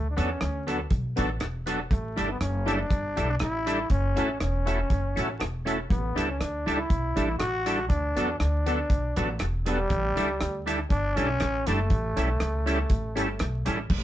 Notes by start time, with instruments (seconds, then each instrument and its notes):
Already playing: upright bass D2
0.10 trombone D4
0.17 upright bass E2, clean electric guitar F#3 B3 D4 A4, tonewheel organ B3 D4 F#4 A4, trombone C#4, closed hi-hat
0.41 upright bass D2, cross-stick, closed hi-hat
0.67 clean electric guitar F#3 B3 D4 A4, tonewheel organ B3 D4 F#4 A4, closed hi-hat
0.90 upright bass B1, muted clean electric guitar stroke, kick, closed hi-hat
1.16 upright bass A1, clean electric guitar F#3 B3 D4 A4, tonewheel organ B3 D4 F#4 A4, closed hi-hat
1.40 upright bass E1, tonewheel organ F#4 A4, cross-stick, closed hi-hat
1.66 clean electric guitar F#3 B3 D4 A4, tonewheel organ B3 D4 F#4 A4, closed hi-hat
1.91 upright bass A1, trombone A3, kick, closed hi-hat
2.16 upright bass G1, clean electric guitar G3 D4 E4 A4, tonewheel organ D4 E4 G4 A4, closed hi-hat
2.29 trombone B3
2.41 upright bass F#1, trombone C#4, cross-stick, closed hi-hat
2.66 clean electric guitar G3 D4 E4 A4, tonewheel organ D4 E4 G4 A4, closed hi-hat
2.79 trombone D4
2.90 upright bass G1, muted clean electric guitar stroke, kick, closed hi-hat
3.16 upright bass B1, clean electric guitar G3 D4 E4 A4, tonewheel organ D4 E4 G4 A4, closed hi-hat
3.30 trombone D4
3.39 upright bass A1, trombone E4, tonewheel organ G4 A4, muted clean electric guitar stroke, cross-stick, closed hi-hat
3.66 clean electric guitar G3 D4 E4 A4, tonewheel organ D4 E4 G4 A4, closed hi-hat
3.90 upright bass F#1, trombone C#4, kick, closed hi-hat
4.16 upright bass A1, clean electric guitar A3 C#4 E4 A4, tonewheel organ C#4 E4 F#4 A4, closed hi-hat
4.40 upright bass E1, trombone C#4, cross-stick, closed hi-hat
4.66 clean electric guitar A3 C#4 E4 A4, tonewheel organ C#4 E4 F#4 A4, closed hi-hat
4.90 upright bass F#1, muted clean electric guitar stroke, kick, closed hi-hat
5.16 upright bass A1, clean electric guitar A3 C#4 E4 A4, tonewheel organ C#4 E4 F#4 A4, closed hi-hat
5.39 upright bass E1, tonewheel organ F#4 A4, muted clean electric guitar stroke, cross-stick, closed hi-hat
5.65 clean electric guitar A3 C#4 E4 A4, tonewheel organ C#4 E4 F#4 A4, closed hi-hat
5.90 upright bass A1, trombone B3, kick, closed hi-hat
6.15 upright bass C#2, clean electric guitar G3 D4 E4 A4, tonewheel organ D4 E4 G4 A4, closed hi-hat
6.28 trombone C#4
6.40 upright bass D2, trombone D4, cross-stick, closed hi-hat
6.66 upright bass C#2, clean electric guitar G3 D4 E4 A4, tonewheel organ D4 E4 G4 A4, closed hi-hat
6.77 trombone E4
6.90 upright bass B1, muted clean electric guitar stroke, kick, closed hi-hat
7.16 upright bass A1, clean electric guitar G3 D4 E4 A4, tonewheel organ D4 E4 G4 A4, closed hi-hat
7.27 trombone E4
7.39 upright bass A1, trombone F#4, tonewheel organ G4 A4, muted clean electric guitar stroke, cross-stick, closed hi-hat
7.66 clean electric guitar G3 D4 E4 A4, tonewheel organ D4 E4 G4 A4, closed hi-hat
7.89 upright bass D2, trombone D4, kick, closed hi-hat
8.16 upright bass E2, clean electric guitar F#3 B3 D4 A4, tonewheel organ B3 D4 F#4 A4, closed hi-hat
8.39 upright bass D2, trombone D4, cross-stick, closed hi-hat
8.66 clean electric guitar F#3 B3 D4 A4, tonewheel organ B3 D4 F#4 A4, closed hi-hat
8.90 upright bass B1, muted clean electric guitar stroke, kick, closed hi-hat
9.16 upright bass A1, clean electric guitar F#3 B3 D4 A4, tonewheel organ B3 D4 F#4 A4, closed hi-hat
9.39 upright bass E1, tonewheel organ F#4 A4, muted clean electric guitar stroke, cross-stick, closed hi-hat
9.66 clean electric guitar F#3 B3 D4 A4, trombone G3, tonewheel organ B3 D4 F#4 A4, closed hi-hat
9.90 upright bass A1, kick, closed hi-hat
10.16 upright bass C#2, clean electric guitar G3 D4 E4 A4, tonewheel organ D4 E4 G4 A4, closed hi-hat
10.41 upright bass D2, cross-stick, closed hi-hat
10.66 clean electric guitar G3 D4 E4 A4, tonewheel organ D4 E4 G4 A4, closed hi-hat
10.90 upright bass G1, trombone D4, muted clean electric guitar stroke, kick, closed hi-hat
11.16 upright bass B1, clean electric guitar G3 D4 E4 A4, trombone C#4, tonewheel organ D4 E4 G4 A4, closed hi-hat
11.40 upright bass A1, tonewheel organ G4 A4, muted clean electric guitar stroke, cross-stick, closed hi-hat
11.67 upright bass F#1, clean electric guitar G3 D4 E4 A4, trombone A3, tonewheel organ D4 E4 G4 A4, closed hi-hat
11.90 upright bass A1, kick, closed hi-hat
12.16 upright bass B1, clean electric guitar G3 C#4 E4 A4, tonewheel organ C#4 E4 G4 A4, closed hi-hat
12.40 upright bass C#2, cross-stick, closed hi-hat
12.66 clean electric guitar G3 C#4 E4 A4, tonewheel organ C#4 E4 G4 A4, closed hi-hat
12.90 upright bass A1, kick, closed hi-hat
13.15 upright bass G1, clean electric guitar G3 C#4 E4 A4, tonewheel organ C#4 E4 G4 A4, closed hi-hat
13.39 upright bass B1, tonewheel organ G4 A4, muted clean electric guitar stroke, cross-stick, closed hi-hat
13.65 upright bass A1, clean electric guitar G3 C#4 E4 A4, tonewheel organ C#4 E4 G4 A4, closed hi-hat
13.90 upright bass A1, kick, crash